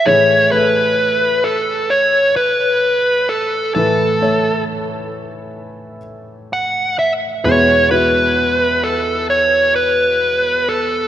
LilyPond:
<<
  \new Staff \with { instrumentName = "Lead electric guitar" } { \time 4/4 \key a \major \tempo 4 = 65 cis''8 b'4 a'8 cis''8 b'4 a'8 | a'4 r2 fis''8 e''8 | cis''8 b'4 a'8 cis''8 b'4 a'8 | }
  \new Staff \with { instrumentName = "Grand piano" } { \time 4/4 \key a \major <a gis' cis''>8 <a a' b'>2 r4. | <a a' b'>8 <a a' cis''>2 r4. | <gis e' b'>8 <b e' fis'>2 r4. | }
  \new Staff \with { instrumentName = "Grand piano" } { \clef bass \time 4/4 \key a \major <a, e>1 | <a, e>1 | <e, b,>1 | }
>>